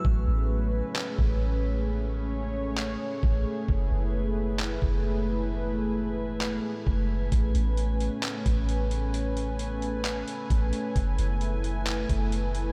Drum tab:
HH |--------|--------|--------|--------|
CP |----x---|----x---|----x---|----x---|
BD |o----o--|------o-|o----o--|------o-|

HH |xxxxxxxx|xxxxxxxx|xxxxxxxx|
CP |----x---|----x---|----x---|
BD |o----o--|------o-|o----o--|